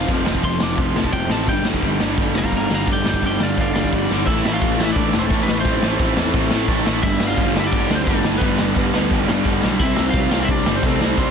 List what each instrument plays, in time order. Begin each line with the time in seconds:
Already playing: lead electric guitar F5
0.08 picked electric bass F1, overdriven electric guitar F2 C3 F3, kick, open hi-hat
0.26 picked electric bass F1, overdriven electric guitar F2 C3 F3, snare
0.35 kick
0.43 picked electric bass F1, overdriven electric guitar F2 C3 F3, lead electric guitar C6, kick, open hi-hat
0.60 picked electric bass F1, overdriven electric guitar F2 C3 F3, lead electric guitar D6, snare
0.78 picked electric bass F1, overdriven electric guitar F2 C3 F3, lead electric guitar C6, kick, open hi-hat
0.94 picked electric bass F1, overdriven electric guitar F2 C3 F3, lead electric guitar A5, snare
1.04 kick
1.13 picked electric bass F1, overdriven electric guitar F2 C3 F3, lead electric guitar G5, kick, open hi-hat
1.28 picked electric bass A1, lead electric guitar A5, snare
1.32 overdriven electric guitar F2 C3 F3
1.47 picked electric bass G1, overdriven electric guitar G2 D3 G3, lead electric guitar G5, kick, open hi-hat
1.65 picked electric bass G1, overdriven electric guitar G2 D3 G3, snare
1.74 kick
1.82 picked electric bass G1, overdriven electric guitar G2 D3 G3, kick, open hi-hat
2.00 picked electric bass G1, overdriven electric guitar G2 D3 G3, snare
2.17 picked electric bass G1, overdriven electric guitar G2 D3 G3, kick, open hi-hat
2.35 picked electric bass G1, overdriven electric guitar G2 D3 G3, lead electric guitar F5 A#5, snare
2.44 kick
2.52 picked electric bass G1, overdriven electric guitar G2 D3 G3, kick, open hi-hat
2.57 lead electric guitar F5 A#5
2.70 picked electric bass G1, overdriven electric guitar G2 D3 G3, snare
2.74 lead electric guitar F5 A#5
2.87 picked electric bass G1, overdriven electric guitar G2 D3 G3, kick, open hi-hat
2.92 lead electric guitar D5 G5
3.05 picked electric bass G1, overdriven electric guitar G2 D3 G3, lead electric guitar D5 G5, snare
3.14 kick
3.23 picked electric bass G1, overdriven electric guitar G2 D3 G3, lead electric guitar D5 G5, kick, open hi-hat
3.40 picked electric bass G1, overdriven electric guitar G2 D3 G3, lead electric guitar D5 F5, snare
3.57 picked electric bass G1, overdriven electric guitar G2 D3 G3, lead electric guitar D5 F5, kick, open hi-hat
3.74 picked electric bass G1, overdriven electric guitar G2, lead electric guitar D5 F5, snare
3.78 overdriven electric guitar D3 G3
3.84 kick
3.93 picked electric bass G1, overdriven electric guitar G2 D3 G3, lead electric guitar D5, kick, open hi-hat
4.10 picked electric bass G1, overdriven electric guitar G2 D3 G3, snare
4.26 picked electric bass A1, overdriven electric guitar A2 E3 A3, lead electric guitar E4 E5, kick, crash
4.45 picked electric bass A1, overdriven electric guitar A2 E3 A3, snare
4.54 lead electric guitar F4 F5
4.62 picked electric bass A1, overdriven electric guitar A2 E3 A3, kick, crash
4.78 picked electric bass A1, overdriven electric guitar A2 E3 A3, snare
4.85 lead electric guitar E4 E5
4.93 picked electric bass A1, lead electric guitar D4 D5, kick, crash
4.97 overdriven electric guitar A2 E3 A3
5.13 picked electric bass E1, overdriven electric guitar A2 E3 A3, snare
5.18 lead electric guitar C4 C5
5.26 picked electric bass A1, lead electric guitar A3 A4
5.31 overdriven electric guitar A2 E3 A3, kick, crash
5.43 lead electric guitar B3 B4
5.48 picked electric bass A1, overdriven electric guitar A2 E3 A3, snare
5.60 lead electric guitar C4 C5
5.65 picked electric bass A1, overdriven electric guitar A2 E3 A3, kick, crash
5.82 picked electric bass A1, overdriven electric guitar A2 E3 A3, snare
5.99 picked electric bass A1, overdriven electric guitar A2 E3 A3, kick, crash
6.17 picked electric bass E2, overdriven electric guitar A2 E3 A3, snare
6.33 picked electric bass A1, overdriven electric guitar A2 E3 A3, kick, crash
6.51 overdriven electric guitar A2 E3 A3, picked electric bass A2, snare
6.68 picked electric bass A1, overdriven electric guitar A2 E3 A3, kick, crash
6.86 picked electric bass A1, overdriven electric guitar A2 E3 A3, snare
7.03 picked electric bass G1, overdriven electric guitar G2 D3 G3, lead electric guitar E4 E5, kick, crash
7.20 picked electric bass G1, overdriven electric guitar G2 D3 G3, snare
7.27 lead electric guitar F4 F5
7.37 picked electric bass G1, overdriven electric guitar G2 D3 G3, kick, crash
7.54 picked electric bass G1, overdriven electric guitar G2 D3 G3, snare
7.60 lead electric guitar E4 E5
7.67 lead electric guitar D4 D5
7.72 picked electric bass G1, overdriven electric guitar G2 D3 G3, kick, crash
7.90 picked electric bass D2, overdriven electric guitar G2 D3 G3, snare
7.95 lead electric guitar C5
7.99 lead electric guitar C4
8.04 picked electric bass G1, lead electric guitar A4, kick, crash
8.08 overdriven electric guitar G2 D3 G3, lead electric guitar A3
8.24 picked electric bass G1, overdriven electric guitar G2 D3 G3, snare
8.38 picked electric bass G1, lead electric guitar B4, kick, crash
8.42 overdriven electric guitar G2 D3 G3, lead electric guitar B3
8.58 picked electric bass G1, overdriven electric guitar G2 D3 G3, snare
8.76 picked electric bass G1, overdriven electric guitar G2 D3 G3, kick, crash
8.94 picked electric bass D2, overdriven electric guitar G2 D3 G3, snare
9.11 picked electric bass G1, overdriven electric guitar G2 D3 G3, kick, crash
9.28 picked electric bass G2, overdriven electric guitar G2 D3 G3, snare
9.45 picked electric bass G1, overdriven electric guitar G2 D3 G3, kick, crash
9.64 picked electric bass B1, overdriven electric guitar G2 D3 G3, snare
9.79 picked electric bass C2, overdriven electric guitar C3 G3, lead electric guitar E4 E5, kick, crash
9.83 overdriven electric guitar C4
9.97 picked electric bass C2, overdriven electric guitar C3 G3, snare
10.01 overdriven electric guitar C4
10.09 lead electric guitar F4 F5
10.13 picked electric bass C2, overdriven electric guitar C3 G3, kick, crash
10.17 overdriven electric guitar C4
10.31 picked electric bass C2, overdriven electric guitar C3 G3 C4, snare
10.36 overdriven electric guitar C3
10.43 lead electric guitar E4 E5
10.48 picked electric bass C2, overdriven electric guitar C3 G3 C4, lead electric guitar D4 D5, kick, crash
10.66 picked electric bass G1, overdriven electric guitar C3 G3 C4, snare
10.76 lead electric guitar C4 C5
10.83 picked electric bass C2, overdriven electric guitar C3 G3 C4, lead electric guitar A3 A4, kick, crash
11.00 picked electric bass C2, overdriven electric guitar C3 G3 C4, snare
11.17 picked electric bass C2, overdriven electric guitar C3 G3 C4, lead electric guitar C4 C5, kick, crash